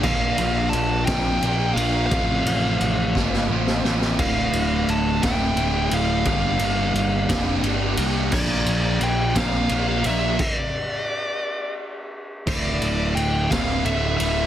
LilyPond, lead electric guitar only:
\new Staff \with { instrumentName = "Lead electric guitar" } { \time 6/8 \key d \minor \tempo 4. = 58 f''4 a''8 g''4 f''8 | f''2 r4 | f''4 a''8 g''4 f''8 | f''2 r4 |
d''4 g''8 f''8. f''16 e''8 | d''2 r4 | d''4 g''8 f''8 e''8 e''8 | }